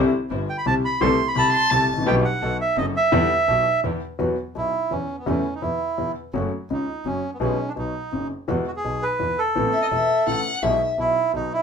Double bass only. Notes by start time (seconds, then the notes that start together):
Already playing: C2
0.31 G1
0.66 C2
1.01 C2
1.36 C2
1.72 C2
1.90 A1
2.07 B1
2.42 B1
2.77 F#1
3.13 E2
3.48 B1
3.84 E2
4.20 E2
4.56 B1
4.92 E2
5.27 E2
5.63 E2
5.99 E2
6.34 F#1
6.70 C#2
7.05 F#1
7.41 B1
7.76 B1
8.12 F#1
8.49 E2
8.85 B1
9.21 E2
9.57 A1
9.92 E1
10.27 A1
10.63 B1
10.98 B1
11.34 B1